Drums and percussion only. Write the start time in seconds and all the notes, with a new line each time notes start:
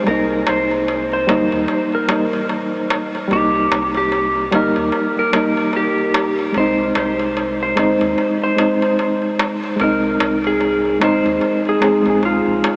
0.07 darbuka tek
0.30 darbuka tek
0.47 darbuka tek
0.71 darbuka tek
0.88 darbuka tek
1.12 darbuka tek
1.29 darbuka tek
1.52 darbuka tek
1.68 darbuka tek
1.92 darbuka tek
2.09 darbuka tek
2.33 darbuka tek
2.49 darbuka tek
2.74 darbuka tek
2.90 darbuka tek
3.15 darbuka tek
3.31 darbuka tek
3.55 darbuka tek
3.72 darbuka tek
3.94 darbuka tek
4.12 darbuka tek
4.36 darbuka tek
4.52 darbuka tek
4.76 darbuka tek
4.92 darbuka tek
5.17 darbuka tek
5.33 darbuka tek
5.57 darbuka tek
5.73 darbuka tek
5.98 darbuka tek
6.14 darbuka tek
6.39 darbuka tek
6.54 darbuka tek
6.78 darbuka tek
6.95 darbuka tek
7.20 darbuka tek
7.37 darbuka tek
7.60 darbuka tek
7.77 darbuka tek
8.01 darbuka tek
8.18 darbuka tek
8.42 darbuka tek
8.58 darbuka tek
8.82 darbuka tek
8.99 darbuka tek
9.22 darbuka tek
9.39 darbuka tek
9.64 darbuka tek
9.80 darbuka tek
10.04 darbuka tek
10.20 darbuka tek
10.44 darbuka tek
10.61 darbuka tek
10.85 darbuka tek
11.01 darbuka tek
11.26 darbuka tek
11.41 darbuka tek
11.65 darbuka tek
11.82 darbuka tek
12.06 darbuka tek
12.23 darbuka tek
12.46 darbuka tek
12.64 darbuka tek